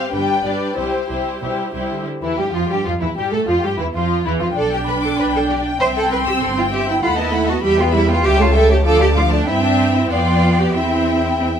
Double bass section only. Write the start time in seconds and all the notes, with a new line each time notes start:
0.12 G1
0.44 G1
0.77 C2
1.09 C2
1.42 C2
1.74 C2
2.22 E2
2.38 G2
2.53 F2
2.70 G2
2.86 F2
3.01 E2
3.17 G2
3.32 A2
3.48 F2
3.64 G2
3.79 E2
3.94 F2
4.26 E2
4.41 F2
4.56 B1
5.19 B1
5.81 C2
6.42 G1
7.03 D#2
7.64 E2
8.24 C#2
8.86 D2
9.47 G2
10.10 F2
10.75 E2